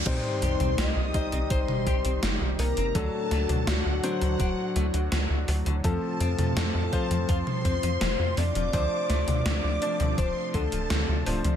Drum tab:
CC |x---------------|----------------|----------------|----------------|
HH |x-xxx-xxx-xxx-ox|x-xxx-xxx-xxx-ox|x-xxx-xxx-xxx-ox|x-xxx-xxx-xxx-ox|
SD |----o-------o---|--o-o-------o---|----o-------o---|--o-o-------o---|
T2 |---o-----o------|---o------------|---o-----o------|---o---o--------|
BD |o-----o-o-o-----|o-------o-------|o-----o-o-o-----|o-------o-o-----|